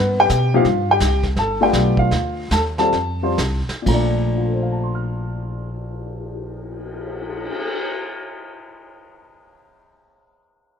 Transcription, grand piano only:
0.00 0.28 B3 medium
0.00 0.27 B4 medium
0.20 0.52 G4 medium
0.20 0.52 G5 loud
0.54 0.65 C3 medium
0.54 0.65 F3 medium
0.54 0.65 A#3 medium
0.54 0.65 D#4 medium
0.54 0.88 F4 medium
0.54 0.65 G4 medium
0.54 0.91 F5 medium
0.91 1.24 G4 medium
0.91 1.23 G5 loud
1.39 1.61 A4 medium
1.39 1.60 A5 medium
1.61 2.09 A3 medium
1.61 2.09 B3 medium
1.61 2.09 D4 medium
1.61 1.99 F4 medium
1.61 1.97 G4 medium
1.61 1.97 G5 medium
1.99 2.49 F4 medium
1.99 2.48 F5 medium
2.52 2.60 A4 medium
2.52 2.58 A5 medium
2.79 2.92 G3 medium
2.79 2.92 C4 medium
2.79 2.92 F4 medium
2.79 2.93 A4 medium
2.79 3.65 A5 loud
3.23 3.37 G3 medium
3.23 3.37 C4 medium
3.23 3.37 F4 medium
3.23 3.37 C5 medium
3.82 7.47 A#2 medium
3.82 7.51 F3 soft
3.88 7.55 A3 medium
3.88 7.49 A#5 medium
3.94 7.58 D4 medium
4.38 7.98 F4 soft
4.45 8.06 A4 soft
4.53 8.14 C5 soft
4.63 8.23 F5 soft
4.72 8.33 A5 soft
4.83 8.44 C6 soft
4.95 8.56 F6 soft

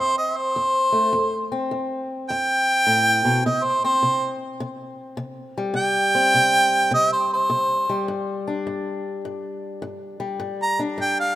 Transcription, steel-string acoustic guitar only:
0.00 0.51 F2 medium
0.00 1.51 C4 medium
0.56 1.10 F2 medium
0.92 1.10 A3 medium
1.13 1.67 F2 medium
1.52 3.84 C4 medium
1.71 2.25 F2 medium
2.30 2.84 F2 medium
2.87 3.24 A2 medium
3.25 3.45 B2 medium
3.46 4.00 C3 medium
3.84 5.75 C4 medium
4.03 4.57 C3 medium
4.60 5.15 C3 medium
5.17 5.72 C3 medium
5.58 7.89 G3 medium
5.74 6.29 C3 medium
6.15 8.06 C4 medium
6.35 6.89 C3 medium
6.91 7.46 C3 medium
7.50 8.04 C3 medium
7.89 10.19 G3 medium
8.08 8.63 G2 medium
8.47 10.38 D4 medium
8.67 9.21 G2 medium
9.25 9.79 G2 medium
9.82 10.36 G2 medium
10.20 11.35 G3 medium
10.40 10.94 G2 medium
10.79 11.35 D4 medium
10.98 11.35 G2 medium

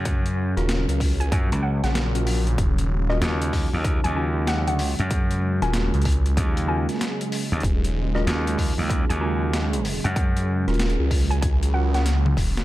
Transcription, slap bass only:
0.00 0.54 F#2 loud
1.32 1.49 F#2 medium
1.52 1.80 C#2 loud
3.22 3.70 D#2 loud
3.73 4.02 D#2 medium
4.05 4.69 D#2 loud
4.69 4.96 D2 loud
5.00 5.59 F#2 loud
6.37 6.86 D#2 medium
7.52 7.62 D#2 loud
8.27 8.75 D#2 loud
8.78 9.07 D#2 medium
9.10 10.01 D#2 loud
10.05 10.65 F#2 loud

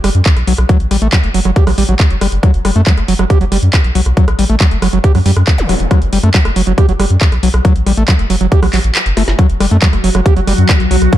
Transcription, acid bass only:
0.04 0.09 G3 medium
0.47 0.53 F#3 medium
0.69 0.77 F#3 medium
0.91 0.96 G3 medium
1.02 1.07 A3 loud
1.13 1.18 F#3 medium
1.34 1.40 F#3 medium
1.45 1.51 F#3 medium
1.56 1.64 G4 medium
1.67 1.70 F#3 loud
1.78 1.83 G3 loud
1.89 1.94 F#3 loud
2.21 2.27 G3 medium
2.43 2.51 F#3 medium
2.65 2.70 G3 medium
2.76 2.81 A3 loud
2.87 2.92 F#3 medium
3.08 3.14 F#3 medium
3.19 3.25 F#3 medium
3.30 3.38 G4 medium
3.41 3.44 F#3 loud
3.52 3.57 G3 medium
3.95 4.01 F#3 medium
4.17 4.25 F#3 medium
4.39 4.44 G3 medium
4.50 4.55 A3 loud
4.60 4.66 F#3 medium
4.82 4.88 F#3 medium
4.93 4.99 F#3 medium
5.04 5.12 G4 medium
5.15 5.18 F#3 loud
5.26 5.31 G3 medium
5.69 5.75 F#3 medium
5.91 5.99 F#3 medium
6.13 6.18 G3 medium
6.23 6.29 A3 loud
6.34 6.40 F#3 medium
6.56 6.62 F#3 medium
6.67 6.72 F#3 medium
6.78 6.86 G4 medium
6.89 6.92 F#3 loud
7.00 7.05 G3 medium
7.43 7.49 F#3 medium
7.65 7.73 F#3 medium
7.87 7.92 G3 medium
7.97 8.03 A3 loud
8.08 8.14 F#3 medium
8.30 8.35 F#3 medium
8.41 8.46 F#3 medium
8.52 8.60 G4 medium
8.63 8.66 F#3 loud
8.73 8.79 F#3 medium
9.17 9.22 A3 loud
9.39 9.47 F#3 medium
9.60 9.66 G3 medium
9.71 9.77 A3 loud
9.82 9.88 F#3 medium
10.04 10.09 F#3 medium
10.15 10.20 F#3 medium
10.26 10.34 G4 medium
10.37 10.40 F#3 loud
10.47 10.53 G3 medium
10.91 10.96 F#3 medium
11.13 11.18 F#3 medium

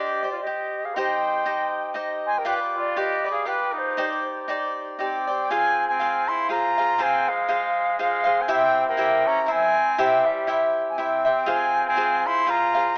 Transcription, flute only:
0.00 0.30 D#5 medium
0.30 0.36 D5 medium
0.42 0.87 D#5 medium
0.85 0.98 F5 medium
0.96 1.96 G5 medium
2.26 2.39 G#5 medium
2.38 2.47 G5 medium
2.48 2.54 G5 loud
2.78 3.00 D5 medium
2.99 3.31 D#5 medium
3.32 3.51 F5 medium
3.49 3.79 G5 medium
3.78 4.26 C5 medium
5.00 5.52 G5 medium
5.50 5.88 G#5 loud
5.88 6.30 G#5 medium
6.28 6.50 C6 medium
6.51 7.04 A#5 medium
7.03 7.30 G#5 loud
7.29 7.99 F5 medium
8.00 8.43 F5 loud
8.42 8.53 G#5 medium
8.51 8.88 G5 loud
8.88 9.29 G5 medium
9.27 9.44 A#5 medium
9.44 9.53 A#5 medium
9.52 10.02 G#5 loud
10.00 10.27 G5 loud
10.26 10.66 E5 medium
10.90 11.00 G#5 medium
10.98 11.50 G5 medium
11.48 11.87 G#5 loud
11.88 12.28 G#5 medium
12.27 12.52 C6 medium
12.50 12.98 A#5 medium

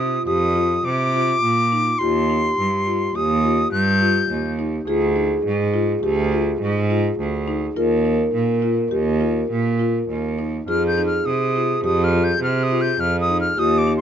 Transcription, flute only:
0.00 0.25 D#6 medium
0.26 0.86 D#6 loud
0.85 2.00 D6 loud
1.99 3.17 C6 loud
3.16 3.71 D#6 loud
3.72 4.54 G6 loud
10.69 10.86 F6 medium
10.87 11.05 G6 medium
11.06 11.27 F6 medium
11.26 11.84 D#6 medium
11.84 12.06 D#6 medium
12.04 12.26 F6 medium
12.24 12.43 G6 loud
12.43 12.65 F6 medium
12.63 12.83 D#6 medium
12.81 13.02 G6 loud
13.00 13.19 F6 loud
13.21 13.38 D#6 loud
13.41 13.60 F6 loud
13.59 13.80 D#6 loud
13.78 13.97 D6 loud
13.97 14.01 C6 medium

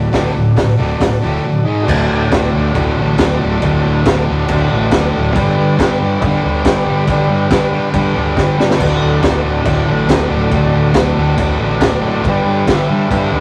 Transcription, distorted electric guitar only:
0.00 0.11 D2 medium
0.00 0.11 A2 medium
0.12 0.33 D2 medium
0.12 0.33 A2 loud
0.12 0.34 D3 loud
0.34 0.55 D2 medium
0.34 0.55 A2 medium
0.56 0.76 D2 medium
0.56 0.77 A2 medium
0.77 0.99 D2 medium
0.77 0.99 A2 loud
0.77 1.00 D3 medium
1.00 1.20 D2 medium
1.00 1.21 A2 medium
1.22 1.43 D2 medium
1.22 1.44 A2 loud
1.22 1.44 D3 medium
1.45 1.64 D2 medium
1.45 1.65 A2 medium
1.65 1.86 G#2 loud
1.65 1.87 D#3 medium
1.65 1.88 G#3 loud
1.86 2.30 D2 loud
1.86 2.32 A2 loud
1.91 2.35 D3 loud
2.30 2.73 D2 loud
2.30 2.56 A2 loud
2.35 2.51 D3 loud
2.52 2.77 D3 medium
2.57 2.75 A2 medium
2.74 3.18 D2 medium
2.74 2.99 A2 medium
2.78 2.94 D3 medium
2.95 3.38 D3 medium
3.01 3.43 A2 medium
3.40 3.65 D3 medium
3.45 3.63 A2 medium
3.61 4.03 D2 loud
3.61 4.05 A2 loud
3.66 4.07 D3 loud
4.04 4.47 D2 loud
4.04 4.30 A2 loud
4.09 4.25 D3 loud
4.27 4.52 D3 medium
4.31 4.50 A2 medium
4.48 4.92 D2 medium
4.48 4.74 A2 medium
4.53 4.69 D3 medium
4.71 5.11 D3 medium
4.75 5.17 A2 medium
5.13 5.34 D3 medium
5.18 5.36 A2 medium
5.35 5.77 G2 loud
5.35 5.79 D3 loud
5.40 5.82 G3 loud
5.77 6.21 G2 loud
5.77 6.03 D3 loud
5.83 5.98 G3 loud
5.99 6.25 G3 medium
6.04 6.23 D3 medium
6.21 6.65 G2 medium
6.21 6.46 D3 medium
6.26 6.41 G3 medium
6.43 6.84 G3 medium
6.47 6.89 D3 medium
6.85 7.10 G3 medium
6.90 7.08 D3 medium
7.07 7.49 G2 medium
7.07 7.52 D3 loud
7.11 7.54 G3 loud
7.50 7.92 G2 loud
7.50 7.77 D3 loud
7.55 7.71 G3 loud
7.73 7.97 G3 medium
7.78 7.95 D3 medium
7.93 8.37 G2 medium
7.93 8.19 D3 medium
7.98 8.14 G3 medium
8.15 8.57 G3 medium
8.20 8.62 D3 medium
8.58 8.79 G3 medium
8.63 8.81 D3 medium
8.79 9.20 D2 loud
8.79 9.22 A2 loud
8.84 9.26 D3 loud
9.21 9.64 D2 loud
9.21 9.46 A2 loud
9.26 9.42 D3 loud
9.42 9.69 D3 medium
9.47 9.66 A2 medium
9.65 10.09 D2 medium
9.65 9.89 A2 medium
9.70 9.84 D3 medium
9.86 10.28 D3 medium
9.91 10.33 A2 medium
10.29 10.54 D3 medium
10.34 10.52 A2 medium
10.51 10.93 D2 medium
10.51 10.95 A2 medium
10.56 10.97 D3 loud
10.94 11.35 D2 loud
10.94 11.19 A2 loud
10.98 11.14 D3 loud
11.15 11.40 D3 medium
11.20 11.38 A2 medium
11.36 11.81 D2 medium
11.36 11.62 A2 medium
11.41 11.57 D3 medium
11.58 12.00 D3 medium
11.63 12.05 A2 medium
12.02 12.23 D3 medium
12.07 12.25 A2 medium
12.24 12.66 G2 loud
12.24 12.68 D3 loud
12.29 12.70 G3 loud
12.67 13.10 G2 loud
12.67 12.92 D3 loud
12.72 12.87 G3 loud
12.88 13.14 G3 medium
12.93 13.12 D3 medium
13.11 13.40 G2 medium
13.11 13.35 D3 medium
13.16 13.30 G3 medium
13.31 13.40 G3 medium
13.36 13.40 D3 medium

